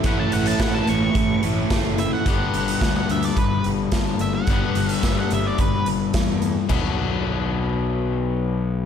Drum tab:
CC |----------------|----------------|----------------|x---------------|
HH |x-xxx-x-x-x-x-x-|x-xxx-xxx-x-x-x-|x-xxx-x-x-x-x-x-|----------------|
SD |----o-------o---|----o-------o---|----o-------o---|----------------|
FT |----------------|----------------|----------------|o---------------|
BD |o---o---o---o---|o---o---o---o---|o---o---o---o---|o---------------|